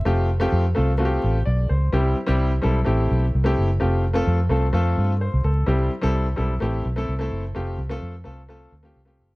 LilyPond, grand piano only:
\new Staff \with { instrumentName = "Grand piano" } { \time 4/4 \key f \lydian \tempo 4 = 128 << { e''8 r2 r8 d''8 c''8~ | c''8 r2. r8 | r2. c''8 a'8~ | a'8 r2. r8 |
r1 | } \\ { <a c' f' g'>8 r16 <a c' f' g'>8 r16 <a c' f' a'>16 r16 <a c' f' fis' g'>8. r4 r16 | <g c' e' g'>8 r16 <g c' e' g'>8 r16 <g c' e' a'>16 r16 <a c' e' g'>8. r8 <a c' e' g'>8 r16 | <a c' f' g'>8 r16 <a c' f' a'>8 r16 <a c' f' a'>16 r16 <a c' f' a'>8. r4 r16 | <g c' e' g'>8 r16 <g c' e' a'>8 r16 <g c' e' a'>16 r16 <a c' e' g'>8 r16 <a c' e' a'>16 r16 <a c' e' a'>8 r16 |
<a c' f' g'>8 r16 <a c' f' a'>8 r16 <a c' f' a'>16 r16 <a c' f' a'>8 r16 <a c' f' g'>16 r16 <a c' f' g'>8 r16 | } >> }